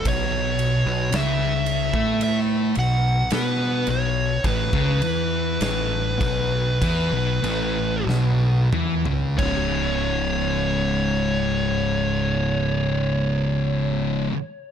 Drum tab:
CC |----------------|----------------|x---------------|
RD |x-x-x-x-x-x-x-x-|x-x-x-x-x-x-----|----------------|
SD |----o-------o---|----o-o-----o---|----------------|
T2 |----------------|--------------o-|----------------|
FT |----------------|---------------o|----------------|
BD |o------o--------|oo----o-o-------|o---------------|